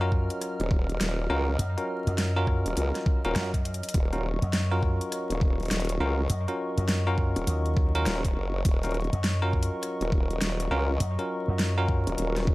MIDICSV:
0, 0, Header, 1, 6, 480
1, 0, Start_track
1, 0, Key_signature, -6, "minor"
1, 0, Tempo, 588235
1, 1298, Time_signature, 4, 2, 24, 8
1, 10237, End_track
2, 0, Start_track
2, 0, Title_t, "Analog synth pad"
2, 0, Program_c, 0, 89
2, 0, Note_on_c, 0, 54, 84
2, 0, Note_on_c, 0, 75, 73
2, 0, Note_on_c, 0, 89, 88
2, 3216, Note_off_c, 0, 89, 0
2, 3220, Note_on_c, 0, 85, 89
2, 10237, Note_off_c, 0, 54, 0
2, 10237, Note_off_c, 0, 75, 0
2, 10237, Note_off_c, 0, 85, 0
2, 10237, End_track
3, 0, Start_track
3, 0, Title_t, "Tine electric piano"
3, 0, Program_c, 1, 4
3, 7, Note_on_c, 1, 66, 84
3, 8, Note_on_c, 1, 61, 87
3, 8, Note_on_c, 1, 65, 81
3, 8, Note_on_c, 1, 70, 94
3, 1036, Note_off_c, 1, 65, 0
3, 1036, Note_off_c, 1, 66, 0
3, 1036, Note_off_c, 1, 70, 0
3, 1037, Note_off_c, 1, 61, 0
3, 1059, Note_on_c, 1, 61, 94
3, 1059, Note_on_c, 1, 65, 82
3, 1059, Note_on_c, 1, 66, 81
3, 1059, Note_on_c, 1, 70, 102
3, 1220, Note_off_c, 1, 61, 0
3, 1220, Note_off_c, 1, 65, 0
3, 1220, Note_off_c, 1, 66, 0
3, 1220, Note_off_c, 1, 70, 0
3, 1449, Note_on_c, 1, 61, 78
3, 1449, Note_on_c, 1, 65, 68
3, 1449, Note_on_c, 1, 70, 84
3, 1450, Note_on_c, 1, 66, 70
3, 1893, Note_off_c, 1, 61, 0
3, 1893, Note_off_c, 1, 65, 0
3, 1893, Note_off_c, 1, 66, 0
3, 1893, Note_off_c, 1, 70, 0
3, 1929, Note_on_c, 1, 65, 86
3, 1929, Note_on_c, 1, 66, 84
3, 1929, Note_on_c, 1, 70, 100
3, 1930, Note_on_c, 1, 61, 86
3, 2619, Note_off_c, 1, 61, 0
3, 2619, Note_off_c, 1, 65, 0
3, 2619, Note_off_c, 1, 66, 0
3, 2619, Note_off_c, 1, 70, 0
3, 2649, Note_on_c, 1, 61, 90
3, 2649, Note_on_c, 1, 70, 102
3, 2650, Note_on_c, 1, 65, 79
3, 2650, Note_on_c, 1, 66, 82
3, 2858, Note_off_c, 1, 61, 0
3, 2858, Note_off_c, 1, 65, 0
3, 2858, Note_off_c, 1, 66, 0
3, 2858, Note_off_c, 1, 70, 0
3, 3367, Note_on_c, 1, 65, 72
3, 3367, Note_on_c, 1, 66, 75
3, 3367, Note_on_c, 1, 70, 88
3, 3368, Note_on_c, 1, 61, 81
3, 3476, Note_off_c, 1, 61, 0
3, 3476, Note_off_c, 1, 65, 0
3, 3476, Note_off_c, 1, 66, 0
3, 3476, Note_off_c, 1, 70, 0
3, 3847, Note_on_c, 1, 70, 97
3, 3848, Note_on_c, 1, 61, 86
3, 3848, Note_on_c, 1, 65, 84
3, 3848, Note_on_c, 1, 66, 82
3, 4876, Note_off_c, 1, 65, 0
3, 4876, Note_off_c, 1, 66, 0
3, 4876, Note_off_c, 1, 70, 0
3, 4877, Note_off_c, 1, 61, 0
3, 4900, Note_on_c, 1, 61, 92
3, 4900, Note_on_c, 1, 65, 80
3, 4900, Note_on_c, 1, 66, 80
3, 4900, Note_on_c, 1, 70, 98
3, 5060, Note_off_c, 1, 61, 0
3, 5060, Note_off_c, 1, 65, 0
3, 5060, Note_off_c, 1, 66, 0
3, 5060, Note_off_c, 1, 70, 0
3, 5287, Note_on_c, 1, 66, 69
3, 5288, Note_on_c, 1, 61, 79
3, 5288, Note_on_c, 1, 65, 69
3, 5288, Note_on_c, 1, 70, 80
3, 5732, Note_off_c, 1, 61, 0
3, 5732, Note_off_c, 1, 65, 0
3, 5732, Note_off_c, 1, 66, 0
3, 5732, Note_off_c, 1, 70, 0
3, 5768, Note_on_c, 1, 61, 92
3, 5768, Note_on_c, 1, 65, 87
3, 5768, Note_on_c, 1, 66, 84
3, 5768, Note_on_c, 1, 70, 100
3, 6458, Note_off_c, 1, 61, 0
3, 6458, Note_off_c, 1, 65, 0
3, 6458, Note_off_c, 1, 66, 0
3, 6458, Note_off_c, 1, 70, 0
3, 6489, Note_on_c, 1, 61, 92
3, 6489, Note_on_c, 1, 65, 83
3, 6489, Note_on_c, 1, 66, 83
3, 6489, Note_on_c, 1, 70, 106
3, 6698, Note_off_c, 1, 61, 0
3, 6698, Note_off_c, 1, 65, 0
3, 6698, Note_off_c, 1, 66, 0
3, 6698, Note_off_c, 1, 70, 0
3, 7210, Note_on_c, 1, 66, 70
3, 7211, Note_on_c, 1, 61, 80
3, 7211, Note_on_c, 1, 65, 70
3, 7211, Note_on_c, 1, 70, 85
3, 7317, Note_off_c, 1, 66, 0
3, 7318, Note_off_c, 1, 61, 0
3, 7318, Note_off_c, 1, 65, 0
3, 7318, Note_off_c, 1, 70, 0
3, 7688, Note_on_c, 1, 66, 81
3, 7689, Note_on_c, 1, 61, 88
3, 7689, Note_on_c, 1, 70, 100
3, 7690, Note_on_c, 1, 65, 80
3, 8717, Note_off_c, 1, 61, 0
3, 8717, Note_off_c, 1, 65, 0
3, 8717, Note_off_c, 1, 66, 0
3, 8717, Note_off_c, 1, 70, 0
3, 8740, Note_on_c, 1, 61, 93
3, 8740, Note_on_c, 1, 65, 88
3, 8740, Note_on_c, 1, 66, 81
3, 8740, Note_on_c, 1, 70, 101
3, 8900, Note_off_c, 1, 61, 0
3, 8900, Note_off_c, 1, 65, 0
3, 8900, Note_off_c, 1, 66, 0
3, 8900, Note_off_c, 1, 70, 0
3, 9129, Note_on_c, 1, 61, 76
3, 9129, Note_on_c, 1, 65, 71
3, 9129, Note_on_c, 1, 70, 83
3, 9130, Note_on_c, 1, 66, 69
3, 9573, Note_off_c, 1, 61, 0
3, 9573, Note_off_c, 1, 65, 0
3, 9573, Note_off_c, 1, 66, 0
3, 9573, Note_off_c, 1, 70, 0
3, 9609, Note_on_c, 1, 65, 82
3, 9609, Note_on_c, 1, 66, 85
3, 9610, Note_on_c, 1, 61, 90
3, 9610, Note_on_c, 1, 70, 99
3, 10237, Note_off_c, 1, 61, 0
3, 10237, Note_off_c, 1, 65, 0
3, 10237, Note_off_c, 1, 66, 0
3, 10237, Note_off_c, 1, 70, 0
3, 10237, End_track
4, 0, Start_track
4, 0, Title_t, "Slap bass"
4, 0, Program_c, 2, 36
4, 0, Note_on_c, 2, 42, 96
4, 223, Note_off_c, 2, 42, 0
4, 1298, Note_on_c, 2, 42, 101
4, 1424, Note_off_c, 2, 42, 0
4, 1689, Note_on_c, 2, 42, 98
4, 2145, Note_off_c, 2, 42, 0
4, 2737, Note_on_c, 2, 42, 98
4, 3104, Note_off_c, 2, 42, 0
4, 3608, Note_on_c, 2, 42, 98
4, 4064, Note_off_c, 2, 42, 0
4, 5139, Note_on_c, 2, 42, 95
4, 5265, Note_off_c, 2, 42, 0
4, 5528, Note_on_c, 2, 42, 92
4, 5984, Note_off_c, 2, 42, 0
4, 6097, Note_on_c, 2, 39, 92
4, 6563, Note_off_c, 2, 39, 0
4, 7449, Note_on_c, 2, 42, 97
4, 7905, Note_off_c, 2, 42, 0
4, 8979, Note_on_c, 2, 42, 98
4, 9105, Note_off_c, 2, 42, 0
4, 9369, Note_on_c, 2, 42, 101
4, 9825, Note_off_c, 2, 42, 0
4, 10237, End_track
5, 0, Start_track
5, 0, Title_t, "Wobble bass"
5, 0, Program_c, 3, 39
5, 489, Note_on_c, 3, 27, 95
5, 804, Note_off_c, 3, 27, 0
5, 819, Note_on_c, 3, 27, 92
5, 1044, Note_off_c, 3, 27, 0
5, 1058, Note_on_c, 3, 37, 97
5, 1284, Note_off_c, 3, 37, 0
5, 2168, Note_on_c, 3, 27, 93
5, 2244, Note_off_c, 3, 27, 0
5, 2259, Note_on_c, 3, 37, 104
5, 2385, Note_off_c, 3, 37, 0
5, 2648, Note_on_c, 3, 27, 95
5, 2724, Note_off_c, 3, 27, 0
5, 3218, Note_on_c, 3, 27, 90
5, 3584, Note_off_c, 3, 27, 0
5, 4325, Note_on_c, 3, 27, 98
5, 4642, Note_off_c, 3, 27, 0
5, 4656, Note_on_c, 3, 27, 93
5, 4883, Note_off_c, 3, 27, 0
5, 4894, Note_on_c, 3, 37, 97
5, 5122, Note_off_c, 3, 37, 0
5, 6009, Note_on_c, 3, 27, 97
5, 6084, Note_off_c, 3, 27, 0
5, 6579, Note_on_c, 3, 27, 93
5, 6804, Note_off_c, 3, 27, 0
5, 6818, Note_on_c, 3, 30, 94
5, 7044, Note_off_c, 3, 30, 0
5, 7058, Note_on_c, 3, 27, 99
5, 7424, Note_off_c, 3, 27, 0
5, 8167, Note_on_c, 3, 27, 96
5, 8483, Note_off_c, 3, 27, 0
5, 8499, Note_on_c, 3, 27, 95
5, 8725, Note_off_c, 3, 27, 0
5, 8740, Note_on_c, 3, 37, 95
5, 8965, Note_off_c, 3, 37, 0
5, 9849, Note_on_c, 3, 27, 100
5, 9924, Note_off_c, 3, 27, 0
5, 9941, Note_on_c, 3, 27, 97
5, 10237, Note_off_c, 3, 27, 0
5, 10237, End_track
6, 0, Start_track
6, 0, Title_t, "Drums"
6, 98, Note_on_c, 9, 36, 60
6, 179, Note_off_c, 9, 36, 0
6, 247, Note_on_c, 9, 42, 50
6, 329, Note_off_c, 9, 42, 0
6, 339, Note_on_c, 9, 37, 43
6, 339, Note_on_c, 9, 42, 84
6, 420, Note_off_c, 9, 37, 0
6, 420, Note_off_c, 9, 42, 0
6, 488, Note_on_c, 9, 42, 34
6, 570, Note_off_c, 9, 42, 0
6, 577, Note_on_c, 9, 36, 97
6, 659, Note_off_c, 9, 36, 0
6, 730, Note_on_c, 9, 42, 36
6, 812, Note_off_c, 9, 42, 0
6, 821, Note_on_c, 9, 38, 107
6, 821, Note_on_c, 9, 42, 78
6, 902, Note_off_c, 9, 38, 0
6, 902, Note_off_c, 9, 42, 0
6, 1299, Note_on_c, 9, 42, 87
6, 1381, Note_off_c, 9, 42, 0
6, 1451, Note_on_c, 9, 42, 35
6, 1532, Note_off_c, 9, 42, 0
6, 1691, Note_on_c, 9, 42, 37
6, 1772, Note_off_c, 9, 42, 0
6, 1779, Note_on_c, 9, 38, 114
6, 1779, Note_on_c, 9, 42, 82
6, 1861, Note_off_c, 9, 38, 0
6, 1861, Note_off_c, 9, 42, 0
6, 2017, Note_on_c, 9, 36, 59
6, 2020, Note_on_c, 9, 37, 41
6, 2099, Note_off_c, 9, 36, 0
6, 2101, Note_off_c, 9, 37, 0
6, 2169, Note_on_c, 9, 42, 56
6, 2250, Note_off_c, 9, 42, 0
6, 2258, Note_on_c, 9, 42, 83
6, 2339, Note_off_c, 9, 42, 0
6, 2408, Note_on_c, 9, 37, 39
6, 2408, Note_on_c, 9, 38, 33
6, 2408, Note_on_c, 9, 42, 38
6, 2490, Note_off_c, 9, 37, 0
6, 2490, Note_off_c, 9, 38, 0
6, 2490, Note_off_c, 9, 42, 0
6, 2498, Note_on_c, 9, 36, 98
6, 2579, Note_off_c, 9, 36, 0
6, 2648, Note_on_c, 9, 42, 37
6, 2730, Note_off_c, 9, 42, 0
6, 2739, Note_on_c, 9, 38, 119
6, 2739, Note_on_c, 9, 42, 78
6, 2821, Note_off_c, 9, 38, 0
6, 2821, Note_off_c, 9, 42, 0
6, 2888, Note_on_c, 9, 36, 59
6, 2890, Note_on_c, 9, 42, 56
6, 2970, Note_off_c, 9, 36, 0
6, 2972, Note_off_c, 9, 42, 0
6, 2981, Note_on_c, 9, 42, 55
6, 3054, Note_off_c, 9, 42, 0
6, 3054, Note_on_c, 9, 42, 63
6, 3129, Note_off_c, 9, 42, 0
6, 3129, Note_on_c, 9, 42, 71
6, 3172, Note_off_c, 9, 42, 0
6, 3172, Note_on_c, 9, 42, 83
6, 3217, Note_off_c, 9, 42, 0
6, 3217, Note_on_c, 9, 42, 87
6, 3218, Note_on_c, 9, 36, 127
6, 3299, Note_off_c, 9, 42, 0
6, 3300, Note_off_c, 9, 36, 0
6, 3368, Note_on_c, 9, 42, 37
6, 3450, Note_off_c, 9, 42, 0
6, 3609, Note_on_c, 9, 42, 41
6, 3690, Note_off_c, 9, 42, 0
6, 3697, Note_on_c, 9, 38, 120
6, 3697, Note_on_c, 9, 42, 81
6, 3779, Note_off_c, 9, 38, 0
6, 3779, Note_off_c, 9, 42, 0
6, 3938, Note_on_c, 9, 36, 62
6, 4019, Note_off_c, 9, 36, 0
6, 4089, Note_on_c, 9, 42, 56
6, 4170, Note_off_c, 9, 42, 0
6, 4178, Note_on_c, 9, 37, 42
6, 4178, Note_on_c, 9, 42, 89
6, 4260, Note_off_c, 9, 37, 0
6, 4260, Note_off_c, 9, 42, 0
6, 4328, Note_on_c, 9, 42, 39
6, 4410, Note_off_c, 9, 42, 0
6, 4417, Note_on_c, 9, 36, 102
6, 4499, Note_off_c, 9, 36, 0
6, 4569, Note_on_c, 9, 42, 18
6, 4592, Note_off_c, 9, 42, 0
6, 4592, Note_on_c, 9, 42, 19
6, 4614, Note_off_c, 9, 42, 0
6, 4614, Note_on_c, 9, 42, 22
6, 4638, Note_off_c, 9, 42, 0
6, 4638, Note_on_c, 9, 42, 25
6, 4659, Note_off_c, 9, 42, 0
6, 4659, Note_on_c, 9, 38, 121
6, 4659, Note_on_c, 9, 42, 81
6, 4698, Note_off_c, 9, 42, 0
6, 4698, Note_on_c, 9, 42, 29
6, 4734, Note_off_c, 9, 42, 0
6, 4734, Note_on_c, 9, 42, 33
6, 4741, Note_off_c, 9, 38, 0
6, 4771, Note_off_c, 9, 42, 0
6, 4771, Note_on_c, 9, 42, 33
6, 4807, Note_off_c, 9, 42, 0
6, 4807, Note_on_c, 9, 42, 58
6, 4889, Note_off_c, 9, 42, 0
6, 5137, Note_on_c, 9, 42, 85
6, 5219, Note_off_c, 9, 42, 0
6, 5289, Note_on_c, 9, 42, 38
6, 5370, Note_off_c, 9, 42, 0
6, 5529, Note_on_c, 9, 42, 39
6, 5610, Note_off_c, 9, 42, 0
6, 5618, Note_on_c, 9, 38, 127
6, 5618, Note_on_c, 9, 42, 85
6, 5699, Note_off_c, 9, 38, 0
6, 5699, Note_off_c, 9, 42, 0
6, 5857, Note_on_c, 9, 36, 65
6, 5939, Note_off_c, 9, 36, 0
6, 6007, Note_on_c, 9, 42, 56
6, 6089, Note_off_c, 9, 42, 0
6, 6098, Note_on_c, 9, 42, 86
6, 6179, Note_off_c, 9, 42, 0
6, 6248, Note_on_c, 9, 42, 36
6, 6329, Note_off_c, 9, 42, 0
6, 6337, Note_on_c, 9, 36, 102
6, 6337, Note_on_c, 9, 37, 42
6, 6418, Note_off_c, 9, 37, 0
6, 6419, Note_off_c, 9, 36, 0
6, 6487, Note_on_c, 9, 42, 40
6, 6568, Note_off_c, 9, 42, 0
6, 6579, Note_on_c, 9, 38, 127
6, 6579, Note_on_c, 9, 42, 85
6, 6660, Note_off_c, 9, 38, 0
6, 6660, Note_off_c, 9, 42, 0
6, 6728, Note_on_c, 9, 36, 65
6, 6729, Note_on_c, 9, 42, 57
6, 6810, Note_off_c, 9, 36, 0
6, 6810, Note_off_c, 9, 42, 0
6, 7058, Note_on_c, 9, 36, 127
6, 7058, Note_on_c, 9, 42, 86
6, 7140, Note_off_c, 9, 36, 0
6, 7140, Note_off_c, 9, 42, 0
6, 7208, Note_on_c, 9, 42, 35
6, 7219, Note_off_c, 9, 42, 0
6, 7219, Note_on_c, 9, 42, 29
6, 7268, Note_off_c, 9, 42, 0
6, 7268, Note_on_c, 9, 42, 23
6, 7298, Note_off_c, 9, 42, 0
6, 7298, Note_on_c, 9, 42, 20
6, 7348, Note_off_c, 9, 42, 0
6, 7348, Note_on_c, 9, 42, 16
6, 7379, Note_off_c, 9, 42, 0
6, 7379, Note_on_c, 9, 42, 13
6, 7450, Note_off_c, 9, 42, 0
6, 7450, Note_on_c, 9, 42, 39
6, 7532, Note_off_c, 9, 42, 0
6, 7540, Note_on_c, 9, 38, 127
6, 7540, Note_on_c, 9, 42, 82
6, 7621, Note_off_c, 9, 38, 0
6, 7621, Note_off_c, 9, 42, 0
6, 7779, Note_on_c, 9, 36, 62
6, 7855, Note_on_c, 9, 42, 55
6, 7861, Note_off_c, 9, 36, 0
6, 7936, Note_off_c, 9, 42, 0
6, 8019, Note_on_c, 9, 37, 42
6, 8019, Note_on_c, 9, 42, 85
6, 8101, Note_off_c, 9, 37, 0
6, 8101, Note_off_c, 9, 42, 0
6, 8168, Note_on_c, 9, 42, 36
6, 8250, Note_off_c, 9, 42, 0
6, 8259, Note_on_c, 9, 36, 107
6, 8341, Note_off_c, 9, 36, 0
6, 8408, Note_on_c, 9, 42, 37
6, 8490, Note_off_c, 9, 42, 0
6, 8498, Note_on_c, 9, 38, 125
6, 8498, Note_on_c, 9, 42, 81
6, 8579, Note_off_c, 9, 38, 0
6, 8579, Note_off_c, 9, 42, 0
6, 8649, Note_on_c, 9, 42, 58
6, 8730, Note_off_c, 9, 42, 0
6, 8979, Note_on_c, 9, 42, 81
6, 9060, Note_off_c, 9, 42, 0
6, 9131, Note_on_c, 9, 42, 35
6, 9212, Note_off_c, 9, 42, 0
6, 9459, Note_on_c, 9, 38, 123
6, 9459, Note_on_c, 9, 42, 80
6, 9540, Note_off_c, 9, 38, 0
6, 9540, Note_off_c, 9, 42, 0
6, 9698, Note_on_c, 9, 36, 64
6, 9780, Note_off_c, 9, 36, 0
6, 9849, Note_on_c, 9, 42, 54
6, 9931, Note_off_c, 9, 42, 0
6, 9938, Note_on_c, 9, 42, 81
6, 10020, Note_off_c, 9, 42, 0
6, 10089, Note_on_c, 9, 37, 37
6, 10089, Note_on_c, 9, 38, 37
6, 10089, Note_on_c, 9, 42, 35
6, 10171, Note_off_c, 9, 37, 0
6, 10171, Note_off_c, 9, 38, 0
6, 10171, Note_off_c, 9, 42, 0
6, 10178, Note_on_c, 9, 36, 111
6, 10237, Note_off_c, 9, 36, 0
6, 10237, End_track
0, 0, End_of_file